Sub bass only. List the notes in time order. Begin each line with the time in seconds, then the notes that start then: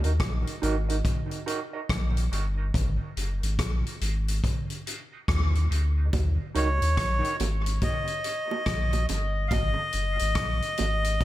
0.05 D#2
0.20 A#1
0.63 G#1
1.90 A#1
2.32 G1
2.74 G#1
3.17 F#1
3.43 G#1
3.59 A#1
4.02 G#1
5.28 D#2
5.71 D2
6.14 D#2
6.55 C#2
6.82 D#2
6.98 A#1
7.40 G#1
8.67 A#1
9.10 G1
9.51 G#1
9.94 F#1
10.21 G#1
10.36 A#1
10.80 G#1